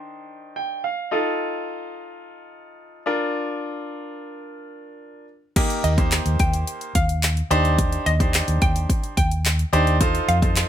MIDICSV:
0, 0, Header, 1, 5, 480
1, 0, Start_track
1, 0, Key_signature, -3, "major"
1, 0, Tempo, 555556
1, 966, Time_signature, 4, 2, 24, 8
1, 9233, End_track
2, 0, Start_track
2, 0, Title_t, "Synth pluck"
2, 0, Program_c, 0, 84
2, 5045, Note_on_c, 0, 75, 85
2, 5137, Note_off_c, 0, 75, 0
2, 5527, Note_on_c, 0, 79, 82
2, 5865, Note_off_c, 0, 79, 0
2, 6007, Note_on_c, 0, 77, 87
2, 6098, Note_off_c, 0, 77, 0
2, 6966, Note_on_c, 0, 75, 88
2, 7058, Note_off_c, 0, 75, 0
2, 7446, Note_on_c, 0, 79, 91
2, 7785, Note_off_c, 0, 79, 0
2, 7925, Note_on_c, 0, 79, 89
2, 8017, Note_off_c, 0, 79, 0
2, 8886, Note_on_c, 0, 77, 87
2, 8978, Note_off_c, 0, 77, 0
2, 9233, End_track
3, 0, Start_track
3, 0, Title_t, "Grand piano"
3, 0, Program_c, 1, 0
3, 0, Note_on_c, 1, 51, 71
3, 0, Note_on_c, 1, 62, 66
3, 0, Note_on_c, 1, 63, 68
3, 0, Note_on_c, 1, 72, 81
3, 485, Note_on_c, 1, 79, 68
3, 689, Note_off_c, 1, 51, 0
3, 690, Note_off_c, 1, 62, 0
3, 692, Note_off_c, 1, 63, 0
3, 693, Note_off_c, 1, 72, 0
3, 709, Note_off_c, 1, 79, 0
3, 726, Note_on_c, 1, 77, 67
3, 949, Note_off_c, 1, 77, 0
3, 961, Note_on_c, 1, 63, 75
3, 966, Note_on_c, 1, 65, 69
3, 970, Note_on_c, 1, 69, 81
3, 2610, Note_off_c, 1, 63, 0
3, 2612, Note_off_c, 1, 65, 0
3, 2614, Note_off_c, 1, 69, 0
3, 2643, Note_on_c, 1, 62, 74
3, 2647, Note_on_c, 1, 65, 66
3, 2652, Note_on_c, 1, 70, 86
3, 4530, Note_off_c, 1, 62, 0
3, 4532, Note_off_c, 1, 65, 0
3, 4534, Note_off_c, 1, 70, 0
3, 4805, Note_on_c, 1, 58, 93
3, 4807, Note_on_c, 1, 63, 91
3, 4808, Note_on_c, 1, 67, 88
3, 4809, Note_on_c, 1, 70, 106
3, 5107, Note_off_c, 1, 58, 0
3, 5108, Note_off_c, 1, 63, 0
3, 5109, Note_off_c, 1, 67, 0
3, 5109, Note_off_c, 1, 70, 0
3, 5163, Note_on_c, 1, 58, 78
3, 5164, Note_on_c, 1, 63, 70
3, 5166, Note_on_c, 1, 67, 67
3, 5168, Note_on_c, 1, 72, 85
3, 5969, Note_off_c, 1, 58, 0
3, 5970, Note_off_c, 1, 63, 0
3, 5971, Note_off_c, 1, 67, 0
3, 5972, Note_off_c, 1, 72, 0
3, 6484, Note_on_c, 1, 62, 104
3, 6485, Note_on_c, 1, 63, 93
3, 6487, Note_on_c, 1, 67, 92
3, 6488, Note_on_c, 1, 72, 112
3, 6988, Note_off_c, 1, 62, 0
3, 6989, Note_off_c, 1, 63, 0
3, 6989, Note_off_c, 1, 67, 0
3, 6990, Note_off_c, 1, 72, 0
3, 7084, Note_on_c, 1, 62, 77
3, 7086, Note_on_c, 1, 63, 72
3, 7087, Note_on_c, 1, 67, 68
3, 7088, Note_on_c, 1, 72, 83
3, 7890, Note_off_c, 1, 62, 0
3, 7891, Note_off_c, 1, 63, 0
3, 7892, Note_off_c, 1, 67, 0
3, 7892, Note_off_c, 1, 72, 0
3, 8403, Note_on_c, 1, 62, 99
3, 8405, Note_on_c, 1, 63, 90
3, 8406, Note_on_c, 1, 67, 92
3, 8408, Note_on_c, 1, 72, 107
3, 8606, Note_off_c, 1, 62, 0
3, 8607, Note_off_c, 1, 63, 0
3, 8607, Note_off_c, 1, 67, 0
3, 8608, Note_off_c, 1, 72, 0
3, 8644, Note_on_c, 1, 63, 96
3, 8645, Note_on_c, 1, 65, 90
3, 8647, Note_on_c, 1, 69, 90
3, 8648, Note_on_c, 1, 72, 111
3, 8947, Note_off_c, 1, 63, 0
3, 8947, Note_off_c, 1, 65, 0
3, 8948, Note_off_c, 1, 69, 0
3, 8949, Note_off_c, 1, 72, 0
3, 9004, Note_on_c, 1, 63, 75
3, 9006, Note_on_c, 1, 65, 68
3, 9007, Note_on_c, 1, 69, 69
3, 9008, Note_on_c, 1, 72, 81
3, 9233, Note_off_c, 1, 63, 0
3, 9233, Note_off_c, 1, 65, 0
3, 9233, Note_off_c, 1, 69, 0
3, 9233, Note_off_c, 1, 72, 0
3, 9233, End_track
4, 0, Start_track
4, 0, Title_t, "Fingered electric bass"
4, 0, Program_c, 2, 33
4, 5045, Note_on_c, 2, 39, 102
4, 5340, Note_off_c, 2, 39, 0
4, 5406, Note_on_c, 2, 39, 92
4, 5504, Note_off_c, 2, 39, 0
4, 5528, Note_on_c, 2, 39, 88
4, 5723, Note_off_c, 2, 39, 0
4, 6007, Note_on_c, 2, 39, 91
4, 6399, Note_off_c, 2, 39, 0
4, 6486, Note_on_c, 2, 39, 94
4, 6879, Note_off_c, 2, 39, 0
4, 6966, Note_on_c, 2, 39, 108
4, 7261, Note_off_c, 2, 39, 0
4, 7326, Note_on_c, 2, 39, 89
4, 7424, Note_off_c, 2, 39, 0
4, 7448, Note_on_c, 2, 39, 91
4, 7644, Note_off_c, 2, 39, 0
4, 7927, Note_on_c, 2, 39, 92
4, 8320, Note_off_c, 2, 39, 0
4, 8405, Note_on_c, 2, 39, 94
4, 8798, Note_off_c, 2, 39, 0
4, 8885, Note_on_c, 2, 41, 102
4, 9180, Note_off_c, 2, 41, 0
4, 9233, End_track
5, 0, Start_track
5, 0, Title_t, "Drums"
5, 4805, Note_on_c, 9, 42, 88
5, 4806, Note_on_c, 9, 36, 113
5, 4806, Note_on_c, 9, 49, 105
5, 4892, Note_off_c, 9, 36, 0
5, 4892, Note_off_c, 9, 42, 0
5, 4892, Note_off_c, 9, 49, 0
5, 4926, Note_on_c, 9, 42, 62
5, 5013, Note_off_c, 9, 42, 0
5, 5046, Note_on_c, 9, 42, 77
5, 5132, Note_off_c, 9, 42, 0
5, 5165, Note_on_c, 9, 36, 108
5, 5166, Note_on_c, 9, 42, 55
5, 5252, Note_off_c, 9, 36, 0
5, 5253, Note_off_c, 9, 42, 0
5, 5285, Note_on_c, 9, 39, 116
5, 5285, Note_on_c, 9, 42, 86
5, 5291, Note_on_c, 9, 38, 95
5, 5372, Note_off_c, 9, 39, 0
5, 5372, Note_off_c, 9, 42, 0
5, 5378, Note_off_c, 9, 38, 0
5, 5406, Note_on_c, 9, 42, 64
5, 5492, Note_off_c, 9, 42, 0
5, 5525, Note_on_c, 9, 42, 78
5, 5527, Note_on_c, 9, 36, 104
5, 5611, Note_off_c, 9, 42, 0
5, 5614, Note_off_c, 9, 36, 0
5, 5646, Note_on_c, 9, 42, 60
5, 5733, Note_off_c, 9, 42, 0
5, 5767, Note_on_c, 9, 42, 81
5, 5853, Note_off_c, 9, 42, 0
5, 5886, Note_on_c, 9, 42, 48
5, 5972, Note_off_c, 9, 42, 0
5, 6005, Note_on_c, 9, 42, 92
5, 6007, Note_on_c, 9, 36, 99
5, 6092, Note_off_c, 9, 42, 0
5, 6094, Note_off_c, 9, 36, 0
5, 6127, Note_on_c, 9, 42, 61
5, 6214, Note_off_c, 9, 42, 0
5, 6247, Note_on_c, 9, 42, 102
5, 6248, Note_on_c, 9, 39, 106
5, 6254, Note_on_c, 9, 38, 81
5, 6333, Note_off_c, 9, 42, 0
5, 6334, Note_off_c, 9, 39, 0
5, 6340, Note_off_c, 9, 38, 0
5, 6368, Note_on_c, 9, 42, 50
5, 6454, Note_off_c, 9, 42, 0
5, 6489, Note_on_c, 9, 42, 84
5, 6576, Note_off_c, 9, 42, 0
5, 6609, Note_on_c, 9, 42, 53
5, 6695, Note_off_c, 9, 42, 0
5, 6726, Note_on_c, 9, 36, 109
5, 6726, Note_on_c, 9, 42, 87
5, 6813, Note_off_c, 9, 36, 0
5, 6813, Note_off_c, 9, 42, 0
5, 6847, Note_on_c, 9, 42, 62
5, 6933, Note_off_c, 9, 42, 0
5, 6967, Note_on_c, 9, 42, 77
5, 7053, Note_off_c, 9, 42, 0
5, 7086, Note_on_c, 9, 36, 105
5, 7087, Note_on_c, 9, 42, 55
5, 7172, Note_off_c, 9, 36, 0
5, 7174, Note_off_c, 9, 42, 0
5, 7207, Note_on_c, 9, 39, 115
5, 7207, Note_on_c, 9, 42, 89
5, 7213, Note_on_c, 9, 38, 95
5, 7293, Note_off_c, 9, 39, 0
5, 7293, Note_off_c, 9, 42, 0
5, 7299, Note_off_c, 9, 38, 0
5, 7326, Note_on_c, 9, 42, 64
5, 7413, Note_off_c, 9, 42, 0
5, 7445, Note_on_c, 9, 42, 77
5, 7448, Note_on_c, 9, 36, 106
5, 7531, Note_off_c, 9, 42, 0
5, 7534, Note_off_c, 9, 36, 0
5, 7567, Note_on_c, 9, 42, 63
5, 7653, Note_off_c, 9, 42, 0
5, 7686, Note_on_c, 9, 36, 112
5, 7688, Note_on_c, 9, 42, 84
5, 7772, Note_off_c, 9, 36, 0
5, 7774, Note_off_c, 9, 42, 0
5, 7806, Note_on_c, 9, 42, 50
5, 7893, Note_off_c, 9, 42, 0
5, 7926, Note_on_c, 9, 42, 94
5, 7927, Note_on_c, 9, 36, 100
5, 8012, Note_off_c, 9, 42, 0
5, 8014, Note_off_c, 9, 36, 0
5, 8048, Note_on_c, 9, 42, 59
5, 8134, Note_off_c, 9, 42, 0
5, 8168, Note_on_c, 9, 42, 101
5, 8169, Note_on_c, 9, 39, 107
5, 8175, Note_on_c, 9, 38, 82
5, 8254, Note_off_c, 9, 42, 0
5, 8255, Note_off_c, 9, 39, 0
5, 8261, Note_off_c, 9, 38, 0
5, 8288, Note_on_c, 9, 42, 50
5, 8374, Note_off_c, 9, 42, 0
5, 8409, Note_on_c, 9, 42, 86
5, 8495, Note_off_c, 9, 42, 0
5, 8529, Note_on_c, 9, 42, 51
5, 8615, Note_off_c, 9, 42, 0
5, 8645, Note_on_c, 9, 42, 88
5, 8646, Note_on_c, 9, 36, 111
5, 8732, Note_off_c, 9, 36, 0
5, 8732, Note_off_c, 9, 42, 0
5, 8767, Note_on_c, 9, 42, 60
5, 8853, Note_off_c, 9, 42, 0
5, 8887, Note_on_c, 9, 42, 79
5, 8973, Note_off_c, 9, 42, 0
5, 9006, Note_on_c, 9, 36, 110
5, 9008, Note_on_c, 9, 42, 56
5, 9092, Note_off_c, 9, 36, 0
5, 9094, Note_off_c, 9, 42, 0
5, 9127, Note_on_c, 9, 39, 117
5, 9127, Note_on_c, 9, 42, 87
5, 9133, Note_on_c, 9, 38, 94
5, 9213, Note_off_c, 9, 39, 0
5, 9213, Note_off_c, 9, 42, 0
5, 9219, Note_off_c, 9, 38, 0
5, 9233, End_track
0, 0, End_of_file